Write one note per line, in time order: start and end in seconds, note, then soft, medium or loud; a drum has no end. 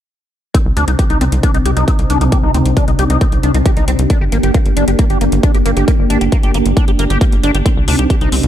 0.54 4.06 C3 medium
0.54 0.58 C4 medium
0.54 4.06 C4 medium
0.54 8.48 D4 medium
0.54 4.06 D#4 medium
0.54 8.48 G4 medium
0.54 kick loud
0.54 closed hi-hat medium
0.66 0.73 C2 medium
0.77 0.85 D2 loud
0.77 0.85 D4 medium
0.77 closed hi-hat medium
0.88 0.96 C2 medium
0.88 0.91 D#4 medium
0.88 closed hi-hat medium
0.99 1.04 G4 medium
0.99 kick loud
0.99 closed hi-hat medium
1.10 1.18 C2 medium
1.10 1.18 D#4 medium
1.10 closed hi-hat soft
1.21 1.29 C2 medium
1.21 1.24 C4 medium
1.21 closed hi-hat medium
1.32 1.40 C2 medium
1.32 closed hi-hat medium
1.43 1.51 D4 medium
1.43 kick loud
1.43 closed hi-hat medium
1.54 1.62 C2 medium
1.54 1.58 D#4 medium
1.54 closed hi-hat soft
1.65 1.73 C2 medium
1.65 1.71 G4 medium
1.65 closed hi-hat medium
1.77 1.85 C2 medium
1.77 1.85 D#4 medium
1.77 closed hi-hat soft
1.88 1.91 C4 medium
1.88 kick loud
1.88 closed hi-hat medium
1.99 2.07 C2 medium
1.99 closed hi-hat soft
2.10 2.18 C2 medium
2.10 2.18 D4 medium
2.10 closed hi-hat medium
2.21 2.29 C2 medium
2.21 2.24 D#4 medium
2.21 closed hi-hat medium
2.32 2.38 G4 medium
2.32 kick loud
2.32 closed hi-hat medium
2.43 2.51 C2 medium
2.43 2.51 D#4 medium
2.54 2.62 D2 loud
2.54 2.58 C4 medium
2.54 closed hi-hat medium
2.66 2.73 C2 medium
2.66 closed hi-hat soft
2.77 2.85 D4 medium
2.77 kick loud
2.77 closed hi-hat medium
2.88 2.96 C2 medium
2.88 2.91 D#4 medium
2.88 closed hi-hat soft
2.99 3.07 C2 loud
2.99 3.04 G4 medium
2.99 closed hi-hat medium
3.10 3.18 C2 medium
3.10 3.18 D#4 medium
3.10 closed hi-hat medium
3.21 3.24 C4 medium
3.21 kick loud
3.21 closed hi-hat medium
3.32 3.40 C2 medium
3.32 closed hi-hat soft
3.43 3.51 C2 loud
3.43 3.51 D4 medium
3.43 closed hi-hat medium
3.54 3.62 C2 medium
3.54 3.58 D#4 medium
3.54 closed hi-hat medium
3.66 3.71 G4 medium
3.66 kick loud
3.66 closed hi-hat medium
3.77 3.85 C2 medium
3.77 3.85 D#4 medium
3.77 closed hi-hat soft
3.88 3.96 C2 loud
3.88 3.91 C4 medium
3.88 closed hi-hat medium
3.99 4.07 C2 medium
3.99 closed hi-hat medium
4.10 7.62 A#3 medium
4.10 4.18 D4 medium
4.10 kick loud
4.10 closed hi-hat medium
4.21 4.29 G1 medium
4.21 4.24 G4 medium
4.32 4.40 G#1 loud
4.32 4.38 A#3 medium
4.32 closed hi-hat medium
4.43 4.51 G1 medium
4.43 4.52 G4 medium
4.43 closed hi-hat soft
4.54 4.58 A#3 medium
4.54 kick loud
4.54 closed hi-hat medium
4.66 4.73 G1 medium
4.66 closed hi-hat soft
4.77 4.85 G1 loud
4.77 4.85 D4 medium
4.77 closed hi-hat medium
4.88 4.96 G1 medium
4.88 4.91 G4 medium
4.88 closed hi-hat medium
4.99 5.04 A#3 medium
4.99 kick loud
4.99 closed hi-hat medium
5.10 5.18 G1 medium
5.10 5.18 G4 medium
5.10 closed hi-hat soft
5.21 5.29 G1 medium
5.21 5.24 A#3 medium
5.21 closed hi-hat medium
5.32 5.40 G1 medium
5.32 closed hi-hat soft
5.43 5.52 D4 medium
5.43 kick loud
5.43 closed hi-hat medium
5.54 5.62 G1 medium
5.54 5.58 G4 medium
5.54 closed hi-hat soft
5.66 5.73 G1 loud
5.66 5.71 A#3 medium
5.66 closed hi-hat medium
5.77 5.85 G1 medium
5.77 5.85 G4 medium
5.77 closed hi-hat soft
5.88 5.91 A#3 medium
5.88 kick loud
5.88 closed hi-hat medium
5.99 6.07 G1 medium
6.10 6.18 G#1 loud
6.10 6.18 D4 medium
6.10 closed hi-hat medium
6.21 6.29 G1 medium
6.21 6.24 G4 medium
6.21 closed hi-hat soft
6.32 6.38 A#3 medium
6.32 kick loud
6.32 closed hi-hat medium
6.43 6.51 G1 medium
6.43 6.52 G4 medium
6.43 closed hi-hat soft
6.54 6.62 G1 loud
6.54 6.58 A#3 medium
6.54 closed hi-hat medium
6.66 6.73 G1 medium
6.66 closed hi-hat soft
6.77 6.85 D4 medium
6.77 kick loud
6.77 closed hi-hat medium
6.88 6.96 G1 medium
6.88 6.91 G4 medium
6.88 closed hi-hat soft
6.99 7.07 G1 loud
6.99 7.04 A#3 medium
6.99 closed hi-hat medium
7.10 7.18 G1 medium
7.10 7.18 G4 medium
7.10 closed hi-hat soft
7.21 7.24 A#3 medium
7.21 kick loud
7.21 closed hi-hat medium
7.32 7.40 G1 medium
7.32 closed hi-hat soft
7.43 7.51 G1 loud
7.43 7.52 D4 medium
7.43 closed hi-hat medium
7.55 7.62 G1 medium
7.55 7.58 G4 medium
7.55 closed hi-hat soft
7.66 8.48 C3 medium
7.66 7.69 C4 medium
7.66 8.48 C4 medium
7.66 8.48 D#4 medium
7.66 kick loud
7.66 closed hi-hat medium
7.77 7.85 C2 medium
7.88 7.96 D2 loud
7.88 7.96 D4 medium
7.88 open hi-hat medium
7.99 8.07 C2 medium
7.99 8.04 G4 medium
7.99 closed hi-hat soft
8.10 8.15 G4 medium
8.10 kick loud
8.10 closed hi-hat medium
8.21 8.29 C2 medium
8.21 8.29 D#4 medium
8.21 closed hi-hat soft
8.32 8.40 C2 loud
8.32 8.36 C4 medium
8.32 open hi-hat loud
8.43 8.48 C2 medium
8.43 closed hi-hat medium